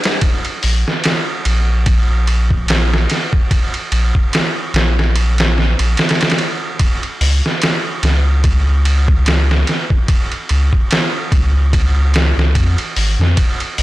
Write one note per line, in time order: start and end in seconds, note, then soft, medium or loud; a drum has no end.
0.04 snare loud
0.04 ride medium
0.21 kick loud
0.21 ride medium
0.45 ride soft
0.63 0.84 A#1 medium
0.63 open hi-hat medium
0.88 snare soft
1.04 snare loud
1.04 ride medium
1.45 3.07 A#1 loud
1.45 ride medium
1.86 kick loud
1.86 ride medium
2.27 ride medium
2.51 kick medium
2.68 snare loud
2.68 ride medium
2.94 snare medium
3.10 snare soft
3.10 ride medium
3.33 kick loud
3.51 kick loud
3.51 ride medium
3.74 ride soft
3.92 4.12 A#1 medium
3.92 ride medium
4.15 kick medium
4.33 snare loud
4.33 ride medium
4.74 5.75 A#1 loud
4.74 snare loud
4.74 ride medium
4.99 snare soft
5.16 ride medium
5.38 snare loud
5.38 ride medium
5.58 snare soft
5.79 5.96 A#1 medium
5.79 ride medium
5.97 snare medium
5.97 ride medium
6.09 snare medium
6.09 ride medium
6.21 snare medium
6.21 ride medium
6.30 snare medium
6.30 ride medium
6.38 ride medium
6.79 kick loud
6.79 ride medium
7.03 ride soft
7.21 7.41 C#2 medium
7.21 open hi-hat medium
7.46 snare soft
7.62 snare loud
7.62 ride medium
8.03 9.64 C#2 loud
8.03 snare soft
8.03 ride medium
8.44 kick loud
8.44 ride medium
8.85 ride medium
9.08 kick medium
9.26 snare loud
9.26 ride medium
9.51 snare medium
9.67 snare soft
9.67 ride medium
9.90 kick medium
10.08 kick loud
10.08 ride medium
10.32 ride soft
10.49 10.71 C#2 medium
10.49 ride medium
10.73 kick medium
10.91 snare loud
10.91 ride medium
11.32 12.33 C#2 loud
11.32 kick loud
11.32 ride medium
11.73 kick loud
11.73 ride medium
12.14 snare loud
12.14 ride medium
12.38 12.57 C#2 medium
12.38 snare soft
12.55 12.76 F2 medium
12.55 kick medium
12.55 ride medium
12.78 ride soft
12.96 13.17 G#1 medium
12.96 open hi-hat medium
13.19 13.35 F2 medium
13.19 snare soft
13.37 kick loud
13.37 ride medium
13.60 ride soft
13.78 13.83 A#1 medium
13.78 open hi-hat medium